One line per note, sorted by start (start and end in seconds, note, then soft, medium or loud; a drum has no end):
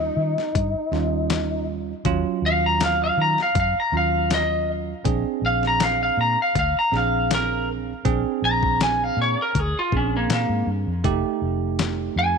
0.00 0.38 G3 medium
0.00 0.38 C#4 medium
0.00 1.65 D#4 loud
0.00 0.38 F4 medium
0.17 0.35 D#3 medium
0.38 snare soft
0.55 0.73 G2 medium
0.55 kick loud
0.55 closed hi-hat medium
0.74 muted fingered electric bass stroke soft
0.92 1.92 D#2 medium
0.92 1.92 G3 medium
0.92 1.92 C#4 medium
0.92 1.93 F4 medium
0.92 snare soft
1.30 snare loud
1.30 closed hi-hat medium
2.05 2.23 D#2 medium
2.05 3.38 F#3 medium
2.05 3.38 C#4 medium
2.05 3.39 F4 loud
2.05 kick loud
2.05 closed hi-hat medium
2.42 3.09 D#2 medium
2.46 2.64 F5 loud
2.66 2.81 A#5 medium
2.80 3.02 F5 medium
2.80 snare loud
2.80 closed hi-hat medium
3.04 3.19 F5 medium
3.17 3.35 D#3 medium
3.22 3.39 A#5 medium
3.38 snare soft
3.42 3.57 F5 medium
3.55 3.73 F#2 medium
3.55 kick loud
3.55 closed hi-hat medium
3.60 3.77 F5 loud
3.75 muted fingered electric bass stroke soft
3.80 3.94 A#5 medium
3.92 4.93 D#2 medium
3.92 4.92 F#3 medium
3.92 4.92 C#4 medium
3.92 4.93 F4 medium
3.97 4.31 F5 medium
4.30 4.69 D#5 loud
4.30 snare medium
4.30 closed hi-hat medium
5.05 5.23 A#1 loud
5.05 6.38 C4 medium
5.05 6.38 D4 medium
5.05 6.38 G#4 medium
5.05 kick loud
5.05 closed hi-hat medium
5.42 6.09 A#1 medium
5.46 5.64 F5 loud
5.63 snare soft
5.67 5.82 A#5 medium
5.80 6.01 F5 medium
5.80 snare loud
5.80 closed hi-hat medium
6.03 6.18 F5 medium
6.17 6.35 A#2 medium
6.17 6.39 A#5 medium
6.42 6.57 F5 medium
6.55 6.73 D2 medium
6.55 6.76 F5 loud
6.55 kick loud
6.55 closed hi-hat medium
6.75 6.94 A#5 medium
6.75 muted fingered electric bass stroke soft
6.92 7.92 A#1 medium
6.92 7.92 C4 medium
6.92 7.92 D4 medium
6.92 7.92 G#4 medium
6.92 snare soft
6.97 7.31 F5 medium
7.31 7.69 A#4 loud
7.31 snare loud
7.31 closed hi-hat medium
8.05 8.23 A#1 loud
8.05 9.38 C4 medium
8.05 9.38 D4 medium
8.05 9.38 G#4 loud
8.05 kick loud
8.05 closed hi-hat medium
8.42 9.09 A#1 medium
8.42 8.80 A#5 loud
8.63 kick medium
8.81 9.04 G#5 medium
8.81 snare loud
8.81 closed hi-hat medium
9.04 9.19 F5 loud
9.17 9.35 A#2 medium
9.22 9.39 C#5 medium
9.42 9.60 A#4 medium
9.55 9.73 D2 medium
9.55 kick loud
9.55 closed hi-hat medium
9.60 9.76 G#4 medium
9.74 muted fingered electric bass stroke soft
9.79 9.94 F4 medium
9.92 10.26 A#1 medium
9.92 10.92 C4 medium
9.92 10.92 D4 medium
9.92 10.92 G#4 medium
9.92 kick medium
9.97 10.14 C#4 medium
10.17 10.31 A#3 medium
10.29 10.47 A#2 medium
10.29 10.67 A#3 medium
10.29 snare loud
10.29 closed hi-hat medium
10.49 10.65 G#2 medium
10.67 10.85 G2 medium
10.87 11.03 F2 medium
11.04 11.22 F1 medium
11.04 12.37 A3 medium
11.04 12.37 D#4 medium
11.04 12.37 G4 loud
11.04 kick loud
11.04 closed hi-hat medium
11.42 12.08 F1 medium
11.79 snare loud
11.79 closed hi-hat medium
12.16 12.34 F2 medium
12.16 12.37 G#5 medium